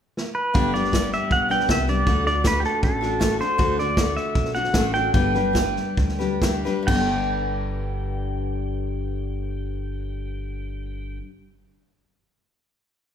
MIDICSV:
0, 0, Header, 1, 5, 480
1, 0, Start_track
1, 0, Key_signature, 1, "major"
1, 0, Tempo, 379507
1, 694, Time_signature, 4, 2, 24, 8
1, 5494, Tempo, 406504
1, 7414, Tempo, 451128
1, 8374, Tempo, 473186
1, 14741, End_track
2, 0, Start_track
2, 0, Title_t, "Pedal steel guitar"
2, 0, Program_c, 0, 26
2, 441, Note_on_c, 0, 71, 81
2, 933, Note_on_c, 0, 74, 82
2, 942, Note_off_c, 0, 71, 0
2, 1428, Note_off_c, 0, 74, 0
2, 1437, Note_on_c, 0, 76, 84
2, 1672, Note_off_c, 0, 76, 0
2, 1673, Note_on_c, 0, 78, 103
2, 1907, Note_off_c, 0, 78, 0
2, 1912, Note_on_c, 0, 79, 92
2, 2149, Note_off_c, 0, 79, 0
2, 2166, Note_on_c, 0, 76, 88
2, 2393, Note_on_c, 0, 74, 84
2, 2396, Note_off_c, 0, 76, 0
2, 2855, Note_off_c, 0, 74, 0
2, 2870, Note_on_c, 0, 74, 89
2, 3108, Note_off_c, 0, 74, 0
2, 3128, Note_on_c, 0, 71, 80
2, 3290, Note_on_c, 0, 67, 59
2, 3295, Note_off_c, 0, 71, 0
2, 3341, Note_off_c, 0, 67, 0
2, 3359, Note_on_c, 0, 69, 77
2, 3577, Note_off_c, 0, 69, 0
2, 3593, Note_on_c, 0, 69, 90
2, 4250, Note_off_c, 0, 69, 0
2, 4309, Note_on_c, 0, 72, 80
2, 4792, Note_off_c, 0, 72, 0
2, 4799, Note_on_c, 0, 74, 89
2, 5269, Note_on_c, 0, 76, 93
2, 5280, Note_off_c, 0, 74, 0
2, 5733, Note_on_c, 0, 78, 91
2, 5746, Note_off_c, 0, 76, 0
2, 6191, Note_off_c, 0, 78, 0
2, 6196, Note_on_c, 0, 79, 79
2, 6425, Note_off_c, 0, 79, 0
2, 6439, Note_on_c, 0, 79, 92
2, 8089, Note_off_c, 0, 79, 0
2, 8371, Note_on_c, 0, 79, 81
2, 12743, Note_off_c, 0, 79, 0
2, 14741, End_track
3, 0, Start_track
3, 0, Title_t, "Steel-string acoustic guitar"
3, 0, Program_c, 1, 25
3, 678, Note_on_c, 1, 43, 67
3, 684, Note_on_c, 1, 50, 81
3, 695, Note_on_c, 1, 55, 76
3, 696, Note_on_c, 1, 59, 81
3, 701, Note_on_c, 1, 62, 79
3, 709, Note_on_c, 1, 67, 84
3, 918, Note_off_c, 1, 67, 0
3, 926, Note_off_c, 1, 43, 0
3, 929, Note_off_c, 1, 50, 0
3, 932, Note_off_c, 1, 62, 0
3, 933, Note_on_c, 1, 67, 40
3, 934, Note_off_c, 1, 55, 0
3, 935, Note_off_c, 1, 59, 0
3, 947, Note_on_c, 1, 62, 39
3, 952, Note_on_c, 1, 59, 38
3, 965, Note_on_c, 1, 55, 38
3, 1149, Note_off_c, 1, 55, 0
3, 1164, Note_on_c, 1, 55, 50
3, 1165, Note_off_c, 1, 59, 0
3, 1174, Note_off_c, 1, 67, 0
3, 1178, Note_off_c, 1, 62, 0
3, 1180, Note_on_c, 1, 59, 55
3, 1193, Note_on_c, 1, 62, 55
3, 1195, Note_on_c, 1, 67, 53
3, 1867, Note_off_c, 1, 67, 0
3, 1882, Note_on_c, 1, 67, 51
3, 1886, Note_off_c, 1, 59, 0
3, 1889, Note_off_c, 1, 55, 0
3, 1891, Note_off_c, 1, 62, 0
3, 1896, Note_on_c, 1, 62, 48
3, 1901, Note_on_c, 1, 59, 44
3, 1913, Note_on_c, 1, 55, 41
3, 2110, Note_off_c, 1, 55, 0
3, 2121, Note_off_c, 1, 59, 0
3, 2125, Note_on_c, 1, 55, 60
3, 2127, Note_off_c, 1, 62, 0
3, 2127, Note_off_c, 1, 67, 0
3, 2136, Note_on_c, 1, 59, 55
3, 2142, Note_on_c, 1, 62, 57
3, 2158, Note_on_c, 1, 67, 56
3, 2351, Note_off_c, 1, 67, 0
3, 2366, Note_off_c, 1, 62, 0
3, 2366, Note_on_c, 1, 67, 45
3, 2369, Note_off_c, 1, 55, 0
3, 2375, Note_off_c, 1, 59, 0
3, 2381, Note_on_c, 1, 62, 48
3, 2391, Note_on_c, 1, 59, 39
3, 2396, Note_on_c, 1, 55, 36
3, 2609, Note_off_c, 1, 67, 0
3, 2611, Note_off_c, 1, 62, 0
3, 2616, Note_on_c, 1, 50, 66
3, 2618, Note_off_c, 1, 55, 0
3, 2621, Note_off_c, 1, 59, 0
3, 2623, Note_on_c, 1, 57, 68
3, 2626, Note_on_c, 1, 62, 70
3, 2635, Note_on_c, 1, 66, 69
3, 2642, Note_on_c, 1, 69, 69
3, 2818, Note_off_c, 1, 69, 0
3, 2834, Note_on_c, 1, 69, 45
3, 2839, Note_off_c, 1, 66, 0
3, 2854, Note_off_c, 1, 50, 0
3, 2855, Note_on_c, 1, 66, 43
3, 2856, Note_off_c, 1, 62, 0
3, 2858, Note_off_c, 1, 57, 0
3, 2871, Note_on_c, 1, 62, 36
3, 3079, Note_off_c, 1, 62, 0
3, 3083, Note_off_c, 1, 69, 0
3, 3087, Note_on_c, 1, 57, 56
3, 3093, Note_off_c, 1, 66, 0
3, 3095, Note_on_c, 1, 62, 64
3, 3111, Note_on_c, 1, 66, 53
3, 3120, Note_on_c, 1, 69, 58
3, 3789, Note_off_c, 1, 69, 0
3, 3804, Note_on_c, 1, 69, 54
3, 3805, Note_off_c, 1, 66, 0
3, 3808, Note_off_c, 1, 57, 0
3, 3821, Note_on_c, 1, 66, 46
3, 3823, Note_off_c, 1, 62, 0
3, 3828, Note_on_c, 1, 62, 38
3, 4041, Note_off_c, 1, 62, 0
3, 4042, Note_on_c, 1, 57, 56
3, 4047, Note_off_c, 1, 69, 0
3, 4055, Note_off_c, 1, 66, 0
3, 4056, Note_on_c, 1, 62, 59
3, 4068, Note_on_c, 1, 66, 60
3, 4076, Note_on_c, 1, 69, 62
3, 4275, Note_off_c, 1, 69, 0
3, 4285, Note_off_c, 1, 57, 0
3, 4290, Note_on_c, 1, 69, 51
3, 4293, Note_off_c, 1, 62, 0
3, 4293, Note_off_c, 1, 66, 0
3, 4308, Note_on_c, 1, 66, 46
3, 4331, Note_on_c, 1, 62, 39
3, 4529, Note_off_c, 1, 62, 0
3, 4529, Note_off_c, 1, 66, 0
3, 4529, Note_off_c, 1, 69, 0
3, 4529, Note_on_c, 1, 50, 68
3, 4531, Note_on_c, 1, 57, 78
3, 4544, Note_on_c, 1, 66, 74
3, 4545, Note_on_c, 1, 62, 69
3, 4554, Note_on_c, 1, 69, 74
3, 4765, Note_off_c, 1, 69, 0
3, 4768, Note_off_c, 1, 50, 0
3, 4770, Note_off_c, 1, 57, 0
3, 4776, Note_off_c, 1, 62, 0
3, 4776, Note_off_c, 1, 66, 0
3, 4780, Note_on_c, 1, 69, 45
3, 4795, Note_on_c, 1, 66, 42
3, 4812, Note_on_c, 1, 62, 40
3, 5015, Note_off_c, 1, 69, 0
3, 5019, Note_off_c, 1, 62, 0
3, 5022, Note_off_c, 1, 66, 0
3, 5025, Note_on_c, 1, 57, 56
3, 5034, Note_on_c, 1, 62, 56
3, 5050, Note_on_c, 1, 66, 59
3, 5057, Note_on_c, 1, 69, 62
3, 5710, Note_off_c, 1, 69, 0
3, 5724, Note_on_c, 1, 69, 49
3, 5731, Note_off_c, 1, 57, 0
3, 5733, Note_off_c, 1, 66, 0
3, 5747, Note_on_c, 1, 66, 45
3, 5755, Note_off_c, 1, 62, 0
3, 5759, Note_on_c, 1, 62, 39
3, 5955, Note_off_c, 1, 69, 0
3, 5956, Note_on_c, 1, 57, 58
3, 5958, Note_off_c, 1, 62, 0
3, 5963, Note_off_c, 1, 66, 0
3, 5972, Note_on_c, 1, 62, 55
3, 5977, Note_on_c, 1, 66, 62
3, 5993, Note_on_c, 1, 69, 69
3, 6180, Note_off_c, 1, 69, 0
3, 6190, Note_off_c, 1, 57, 0
3, 6194, Note_on_c, 1, 69, 51
3, 6196, Note_off_c, 1, 66, 0
3, 6198, Note_off_c, 1, 62, 0
3, 6210, Note_on_c, 1, 66, 38
3, 6221, Note_on_c, 1, 62, 42
3, 6429, Note_off_c, 1, 62, 0
3, 6429, Note_off_c, 1, 69, 0
3, 6434, Note_on_c, 1, 43, 70
3, 6437, Note_off_c, 1, 66, 0
3, 6438, Note_on_c, 1, 50, 76
3, 6441, Note_on_c, 1, 55, 72
3, 6444, Note_on_c, 1, 62, 73
3, 6450, Note_on_c, 1, 71, 79
3, 6451, Note_on_c, 1, 67, 79
3, 6664, Note_off_c, 1, 71, 0
3, 6671, Note_off_c, 1, 43, 0
3, 6671, Note_off_c, 1, 67, 0
3, 6673, Note_off_c, 1, 50, 0
3, 6675, Note_off_c, 1, 55, 0
3, 6676, Note_off_c, 1, 62, 0
3, 6678, Note_on_c, 1, 71, 50
3, 6686, Note_on_c, 1, 67, 46
3, 6699, Note_on_c, 1, 62, 42
3, 6705, Note_on_c, 1, 55, 39
3, 6882, Note_off_c, 1, 55, 0
3, 6896, Note_on_c, 1, 55, 53
3, 6900, Note_off_c, 1, 62, 0
3, 6907, Note_off_c, 1, 67, 0
3, 6914, Note_on_c, 1, 62, 52
3, 6918, Note_off_c, 1, 71, 0
3, 6922, Note_on_c, 1, 67, 57
3, 6933, Note_on_c, 1, 71, 58
3, 7631, Note_off_c, 1, 71, 0
3, 7639, Note_off_c, 1, 55, 0
3, 7644, Note_on_c, 1, 71, 54
3, 7645, Note_off_c, 1, 67, 0
3, 7647, Note_off_c, 1, 62, 0
3, 7658, Note_on_c, 1, 67, 50
3, 7666, Note_on_c, 1, 62, 47
3, 7672, Note_on_c, 1, 55, 48
3, 7873, Note_off_c, 1, 55, 0
3, 7882, Note_off_c, 1, 71, 0
3, 7886, Note_on_c, 1, 55, 59
3, 7887, Note_off_c, 1, 62, 0
3, 7890, Note_off_c, 1, 67, 0
3, 7900, Note_on_c, 1, 62, 60
3, 7908, Note_on_c, 1, 67, 72
3, 7917, Note_on_c, 1, 71, 67
3, 8124, Note_off_c, 1, 71, 0
3, 8127, Note_off_c, 1, 55, 0
3, 8134, Note_off_c, 1, 62, 0
3, 8136, Note_off_c, 1, 67, 0
3, 8136, Note_on_c, 1, 71, 55
3, 8148, Note_on_c, 1, 67, 51
3, 8154, Note_on_c, 1, 62, 51
3, 8164, Note_on_c, 1, 55, 38
3, 8325, Note_on_c, 1, 43, 72
3, 8379, Note_off_c, 1, 71, 0
3, 8381, Note_on_c, 1, 50, 73
3, 8385, Note_off_c, 1, 67, 0
3, 8388, Note_off_c, 1, 62, 0
3, 8393, Note_off_c, 1, 55, 0
3, 8413, Note_on_c, 1, 55, 68
3, 8452, Note_on_c, 1, 62, 79
3, 8483, Note_on_c, 1, 67, 77
3, 8519, Note_on_c, 1, 71, 69
3, 12740, Note_off_c, 1, 43, 0
3, 12794, Note_off_c, 1, 50, 0
3, 12826, Note_off_c, 1, 55, 0
3, 12865, Note_off_c, 1, 62, 0
3, 12895, Note_off_c, 1, 67, 0
3, 12932, Note_off_c, 1, 71, 0
3, 14741, End_track
4, 0, Start_track
4, 0, Title_t, "Upright bass"
4, 0, Program_c, 2, 32
4, 696, Note_on_c, 2, 31, 84
4, 1406, Note_off_c, 2, 31, 0
4, 1649, Note_on_c, 2, 35, 69
4, 2059, Note_off_c, 2, 35, 0
4, 2133, Note_on_c, 2, 36, 80
4, 2541, Note_off_c, 2, 36, 0
4, 2611, Note_on_c, 2, 38, 87
4, 3321, Note_off_c, 2, 38, 0
4, 3574, Note_on_c, 2, 33, 77
4, 4282, Note_off_c, 2, 33, 0
4, 4536, Note_on_c, 2, 38, 88
4, 5248, Note_off_c, 2, 38, 0
4, 5506, Note_on_c, 2, 35, 77
4, 5893, Note_off_c, 2, 35, 0
4, 5963, Note_on_c, 2, 33, 78
4, 6361, Note_off_c, 2, 33, 0
4, 6433, Note_on_c, 2, 31, 89
4, 7161, Note_off_c, 2, 31, 0
4, 7420, Note_on_c, 2, 38, 73
4, 8128, Note_off_c, 2, 38, 0
4, 8379, Note_on_c, 2, 31, 93
4, 12752, Note_off_c, 2, 31, 0
4, 14741, End_track
5, 0, Start_track
5, 0, Title_t, "Drums"
5, 219, Note_on_c, 9, 38, 65
5, 345, Note_off_c, 9, 38, 0
5, 695, Note_on_c, 9, 36, 101
5, 695, Note_on_c, 9, 38, 29
5, 821, Note_off_c, 9, 38, 0
5, 822, Note_off_c, 9, 36, 0
5, 940, Note_on_c, 9, 38, 31
5, 1064, Note_off_c, 9, 38, 0
5, 1064, Note_on_c, 9, 38, 27
5, 1178, Note_on_c, 9, 36, 80
5, 1183, Note_off_c, 9, 38, 0
5, 1183, Note_on_c, 9, 38, 96
5, 1183, Note_on_c, 9, 44, 83
5, 1304, Note_off_c, 9, 36, 0
5, 1310, Note_off_c, 9, 38, 0
5, 1310, Note_off_c, 9, 44, 0
5, 1416, Note_on_c, 9, 38, 28
5, 1543, Note_off_c, 9, 38, 0
5, 1652, Note_on_c, 9, 38, 30
5, 1655, Note_on_c, 9, 36, 98
5, 1779, Note_off_c, 9, 38, 0
5, 1781, Note_off_c, 9, 36, 0
5, 1894, Note_on_c, 9, 38, 30
5, 2021, Note_off_c, 9, 38, 0
5, 2021, Note_on_c, 9, 38, 30
5, 2136, Note_on_c, 9, 36, 81
5, 2140, Note_off_c, 9, 38, 0
5, 2140, Note_on_c, 9, 38, 100
5, 2140, Note_on_c, 9, 44, 71
5, 2263, Note_off_c, 9, 36, 0
5, 2267, Note_off_c, 9, 38, 0
5, 2267, Note_off_c, 9, 44, 0
5, 2372, Note_on_c, 9, 38, 28
5, 2498, Note_off_c, 9, 38, 0
5, 2613, Note_on_c, 9, 38, 34
5, 2615, Note_on_c, 9, 36, 104
5, 2739, Note_off_c, 9, 38, 0
5, 2741, Note_off_c, 9, 36, 0
5, 2859, Note_on_c, 9, 38, 31
5, 2986, Note_off_c, 9, 38, 0
5, 3088, Note_on_c, 9, 38, 98
5, 3088, Note_on_c, 9, 44, 83
5, 3097, Note_on_c, 9, 36, 80
5, 3215, Note_off_c, 9, 38, 0
5, 3215, Note_off_c, 9, 44, 0
5, 3223, Note_off_c, 9, 36, 0
5, 3337, Note_on_c, 9, 38, 29
5, 3464, Note_off_c, 9, 38, 0
5, 3580, Note_on_c, 9, 36, 105
5, 3581, Note_on_c, 9, 38, 30
5, 3706, Note_off_c, 9, 36, 0
5, 3708, Note_off_c, 9, 38, 0
5, 3826, Note_on_c, 9, 38, 31
5, 3953, Note_off_c, 9, 38, 0
5, 4053, Note_on_c, 9, 38, 96
5, 4053, Note_on_c, 9, 44, 77
5, 4059, Note_on_c, 9, 36, 71
5, 4180, Note_off_c, 9, 38, 0
5, 4180, Note_off_c, 9, 44, 0
5, 4186, Note_off_c, 9, 36, 0
5, 4302, Note_on_c, 9, 38, 28
5, 4428, Note_off_c, 9, 38, 0
5, 4538, Note_on_c, 9, 38, 34
5, 4542, Note_on_c, 9, 36, 98
5, 4664, Note_off_c, 9, 38, 0
5, 4668, Note_off_c, 9, 36, 0
5, 4789, Note_on_c, 9, 38, 30
5, 4915, Note_off_c, 9, 38, 0
5, 5022, Note_on_c, 9, 38, 105
5, 5022, Note_on_c, 9, 44, 77
5, 5023, Note_on_c, 9, 36, 86
5, 5148, Note_off_c, 9, 38, 0
5, 5148, Note_off_c, 9, 44, 0
5, 5149, Note_off_c, 9, 36, 0
5, 5265, Note_on_c, 9, 38, 28
5, 5391, Note_off_c, 9, 38, 0
5, 5502, Note_on_c, 9, 38, 33
5, 5506, Note_on_c, 9, 36, 100
5, 5617, Note_off_c, 9, 38, 0
5, 5617, Note_on_c, 9, 38, 32
5, 5624, Note_off_c, 9, 36, 0
5, 5727, Note_off_c, 9, 38, 0
5, 5727, Note_on_c, 9, 38, 31
5, 5842, Note_off_c, 9, 38, 0
5, 5842, Note_on_c, 9, 38, 29
5, 5958, Note_off_c, 9, 38, 0
5, 5958, Note_on_c, 9, 38, 101
5, 5958, Note_on_c, 9, 44, 75
5, 5963, Note_on_c, 9, 36, 79
5, 6076, Note_off_c, 9, 38, 0
5, 6076, Note_off_c, 9, 44, 0
5, 6081, Note_off_c, 9, 36, 0
5, 6193, Note_on_c, 9, 38, 29
5, 6311, Note_off_c, 9, 38, 0
5, 6430, Note_on_c, 9, 38, 33
5, 6435, Note_on_c, 9, 36, 112
5, 6548, Note_off_c, 9, 38, 0
5, 6553, Note_off_c, 9, 36, 0
5, 6677, Note_on_c, 9, 38, 30
5, 6795, Note_off_c, 9, 38, 0
5, 6916, Note_on_c, 9, 38, 93
5, 6916, Note_on_c, 9, 44, 81
5, 6918, Note_on_c, 9, 36, 75
5, 7034, Note_off_c, 9, 38, 0
5, 7034, Note_off_c, 9, 44, 0
5, 7037, Note_off_c, 9, 36, 0
5, 7169, Note_on_c, 9, 38, 28
5, 7287, Note_off_c, 9, 38, 0
5, 7419, Note_on_c, 9, 36, 92
5, 7419, Note_on_c, 9, 38, 30
5, 7525, Note_off_c, 9, 36, 0
5, 7525, Note_off_c, 9, 38, 0
5, 7536, Note_on_c, 9, 38, 31
5, 7643, Note_off_c, 9, 38, 0
5, 7654, Note_on_c, 9, 38, 30
5, 7761, Note_off_c, 9, 38, 0
5, 7889, Note_on_c, 9, 36, 74
5, 7892, Note_on_c, 9, 38, 98
5, 7892, Note_on_c, 9, 44, 77
5, 7996, Note_off_c, 9, 36, 0
5, 7998, Note_off_c, 9, 38, 0
5, 7998, Note_off_c, 9, 44, 0
5, 8137, Note_on_c, 9, 38, 28
5, 8244, Note_off_c, 9, 38, 0
5, 8380, Note_on_c, 9, 36, 95
5, 8380, Note_on_c, 9, 49, 84
5, 8481, Note_off_c, 9, 36, 0
5, 8481, Note_off_c, 9, 49, 0
5, 14741, End_track
0, 0, End_of_file